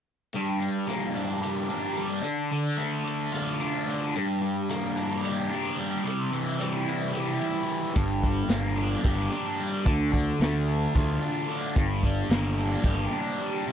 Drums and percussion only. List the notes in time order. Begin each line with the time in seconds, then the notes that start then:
0.33 closed hi-hat
0.62 closed hi-hat
0.89 closed hi-hat
1.16 closed hi-hat
1.43 closed hi-hat
1.70 closed hi-hat
1.97 closed hi-hat
2.24 closed hi-hat
2.51 closed hi-hat
2.79 closed hi-hat
3.07 closed hi-hat
3.34 closed hi-hat
3.61 closed hi-hat
3.89 closed hi-hat
4.16 closed hi-hat
4.43 closed hi-hat
4.70 closed hi-hat
4.97 closed hi-hat
5.25 closed hi-hat
5.52 closed hi-hat
5.79 closed hi-hat
6.07 closed hi-hat
6.33 closed hi-hat
6.61 closed hi-hat
6.88 closed hi-hat
7.15 closed hi-hat
7.42 closed hi-hat
7.68 closed hi-hat
7.96 kick, closed hi-hat
8.23 kick, closed hi-hat
8.49 snare, closed hi-hat
8.77 closed hi-hat
9.04 kick, closed hi-hat
9.32 closed hi-hat
9.59 closed hi-hat
9.86 kick, closed hi-hat
10.13 kick, closed hi-hat
10.41 snare, closed hi-hat
10.69 closed hi-hat
10.96 kick, closed hi-hat
11.24 closed hi-hat
11.51 closed hi-hat
11.76 kick, closed hi-hat
12.03 kick, closed hi-hat
12.30 snare, closed hi-hat
12.57 closed hi-hat
12.83 kick, closed hi-hat
13.12 closed hi-hat
13.38 closed hi-hat